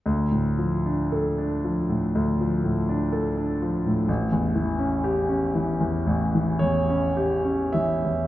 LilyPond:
<<
  \new Staff \with { instrumentName = "Grand piano" } { \time 4/4 \key d \minor \tempo 4 = 58 r1 | r2 r8 cis''4 e''8 | }
  \new Staff \with { instrumentName = "Grand piano" } { \clef bass \time 4/4 \key d \minor d,16 a,16 f16 d'16 a'16 d'16 f16 a,16 d,16 f16 a,16 d'16 a'16 d'16 f16 a,16 | a,,16 e,16 e16 cis'16 g'16 cis'16 e16 e,16 a,,16 e16 e,16 cis'16 g'16 cis'16 e16 e,16 | }
>>